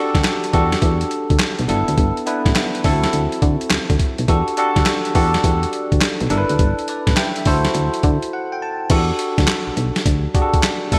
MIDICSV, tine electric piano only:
0, 0, Header, 1, 2, 480
1, 0, Start_track
1, 0, Key_signature, 1, "minor"
1, 0, Tempo, 576923
1, 1646, Time_signature, 4, 2, 24, 8
1, 9142, End_track
2, 0, Start_track
2, 0, Title_t, "Tine electric piano"
2, 0, Program_c, 0, 4
2, 0, Control_c, 0, 64, 127
2, 0, Note_on_c, 0, 62, 81
2, 0, Note_on_c, 0, 66, 74
2, 0, Note_on_c, 0, 67, 76
2, 0, Note_on_c, 0, 69, 87
2, 352, Note_off_c, 0, 62, 0
2, 353, Note_off_c, 0, 66, 0
2, 356, Note_off_c, 0, 67, 0
2, 358, Note_off_c, 0, 69, 0
2, 440, Note_on_c, 0, 62, 80
2, 444, Note_on_c, 0, 66, 78
2, 446, Note_on_c, 0, 67, 76
2, 449, Note_on_c, 0, 69, 95
2, 1152, Note_off_c, 0, 62, 0
2, 1154, Note_off_c, 0, 66, 0
2, 1154, Note_off_c, 0, 67, 0
2, 1156, Note_off_c, 0, 69, 0
2, 1401, Note_on_c, 0, 59, 89
2, 1402, Note_on_c, 0, 62, 74
2, 1406, Note_on_c, 0, 64, 81
2, 1410, Note_on_c, 0, 69, 91
2, 1416, Control_c, 0, 64, 0
2, 1540, Control_c, 0, 64, 127
2, 1819, Note_off_c, 0, 59, 0
2, 1819, Note_off_c, 0, 62, 0
2, 1822, Note_off_c, 0, 64, 0
2, 1823, Note_off_c, 0, 69, 0
2, 1882, Note_on_c, 0, 59, 76
2, 1886, Note_on_c, 0, 62, 78
2, 1889, Note_on_c, 0, 64, 78
2, 1893, Note_on_c, 0, 71, 88
2, 2272, Note_off_c, 0, 59, 0
2, 2274, Note_off_c, 0, 62, 0
2, 2276, Note_off_c, 0, 64, 0
2, 2277, Note_off_c, 0, 71, 0
2, 2365, Note_on_c, 0, 60, 88
2, 2366, Note_on_c, 0, 64, 75
2, 2370, Note_on_c, 0, 66, 78
2, 2374, Note_on_c, 0, 69, 95
2, 2378, Control_c, 0, 64, 0
2, 2509, Control_c, 0, 64, 127
2, 3149, Note_off_c, 0, 60, 0
2, 3150, Note_off_c, 0, 64, 0
2, 3152, Note_off_c, 0, 66, 0
2, 3154, Note_off_c, 0, 69, 0
2, 3563, Note_on_c, 0, 62, 83
2, 3567, Note_on_c, 0, 66, 73
2, 3571, Note_on_c, 0, 67, 74
2, 3573, Note_on_c, 0, 69, 90
2, 3578, Control_c, 0, 64, 0
2, 3742, Control_c, 0, 64, 127
2, 3761, Note_off_c, 0, 62, 0
2, 3763, Note_off_c, 0, 66, 0
2, 3765, Note_off_c, 0, 67, 0
2, 3766, Note_off_c, 0, 69, 0
2, 3808, Note_on_c, 0, 62, 84
2, 3811, Note_on_c, 0, 66, 78
2, 3812, Note_on_c, 0, 67, 77
2, 3818, Note_on_c, 0, 69, 92
2, 4195, Note_off_c, 0, 62, 0
2, 4197, Note_off_c, 0, 66, 0
2, 4197, Note_off_c, 0, 67, 0
2, 4200, Note_off_c, 0, 69, 0
2, 4282, Note_on_c, 0, 62, 83
2, 4286, Note_on_c, 0, 66, 75
2, 4287, Note_on_c, 0, 67, 76
2, 4291, Note_on_c, 0, 69, 88
2, 4993, Note_off_c, 0, 62, 0
2, 4994, Note_off_c, 0, 66, 0
2, 4995, Note_off_c, 0, 67, 0
2, 4997, Note_off_c, 0, 69, 0
2, 5243, Note_on_c, 0, 62, 91
2, 5246, Note_on_c, 0, 64, 76
2, 5250, Note_on_c, 0, 69, 81
2, 5253, Note_on_c, 0, 70, 79
2, 5258, Control_c, 0, 64, 0
2, 5306, Note_on_c, 0, 71, 96
2, 5321, Note_off_c, 0, 70, 0
2, 5415, Control_c, 0, 64, 127
2, 5660, Note_off_c, 0, 62, 0
2, 5661, Note_off_c, 0, 64, 0
2, 5664, Note_off_c, 0, 69, 0
2, 5691, Note_off_c, 0, 71, 0
2, 5733, Note_on_c, 0, 74, 68
2, 5739, Note_on_c, 0, 71, 59
2, 5957, Note_off_c, 0, 74, 0
2, 5961, Note_off_c, 0, 71, 0
2, 5971, Note_on_c, 0, 79, 74
2, 5974, Note_on_c, 0, 76, 58
2, 6120, Note_off_c, 0, 79, 0
2, 6122, Note_off_c, 0, 76, 0
2, 6133, Note_on_c, 0, 76, 60
2, 6208, Note_on_c, 0, 64, 85
2, 6211, Note_on_c, 0, 66, 82
2, 6215, Note_on_c, 0, 69, 84
2, 6217, Control_c, 0, 64, 0
2, 6217, Note_on_c, 0, 72, 99
2, 6344, Control_c, 0, 64, 127
2, 6357, Note_off_c, 0, 76, 0
2, 6934, Note_on_c, 0, 78, 77
2, 6991, Note_off_c, 0, 64, 0
2, 6992, Note_off_c, 0, 66, 0
2, 6994, Note_off_c, 0, 69, 0
2, 6995, Note_off_c, 0, 72, 0
2, 7078, Note_off_c, 0, 78, 0
2, 7091, Note_on_c, 0, 79, 70
2, 7164, Note_off_c, 0, 79, 0
2, 7175, Note_on_c, 0, 81, 69
2, 7394, Note_off_c, 0, 81, 0
2, 7406, Note_on_c, 0, 62, 84
2, 7411, Note_on_c, 0, 66, 79
2, 7414, Note_on_c, 0, 67, 75
2, 7418, Control_c, 0, 64, 0
2, 7418, Note_on_c, 0, 69, 92
2, 7586, Control_c, 0, 64, 127
2, 8115, Note_off_c, 0, 62, 0
2, 8117, Note_off_c, 0, 66, 0
2, 8119, Note_off_c, 0, 67, 0
2, 8120, Note_off_c, 0, 69, 0
2, 8606, Note_on_c, 0, 62, 84
2, 8609, Note_on_c, 0, 66, 76
2, 8612, Note_on_c, 0, 67, 76
2, 8618, Note_on_c, 0, 68, 68
2, 8669, Note_on_c, 0, 69, 84
2, 8684, Note_off_c, 0, 68, 0
2, 8994, Note_off_c, 0, 62, 0
2, 8996, Note_off_c, 0, 66, 0
2, 8997, Note_off_c, 0, 67, 0
2, 9025, Note_off_c, 0, 69, 0
2, 9086, Note_on_c, 0, 58, 72
2, 9090, Note_on_c, 0, 62, 85
2, 9092, Note_on_c, 0, 64, 77
2, 9096, Control_c, 0, 64, 0
2, 9096, Note_on_c, 0, 69, 98
2, 9142, Note_off_c, 0, 58, 0
2, 9142, Note_off_c, 0, 62, 0
2, 9142, Note_off_c, 0, 64, 0
2, 9142, Note_off_c, 0, 69, 0
2, 9142, End_track
0, 0, End_of_file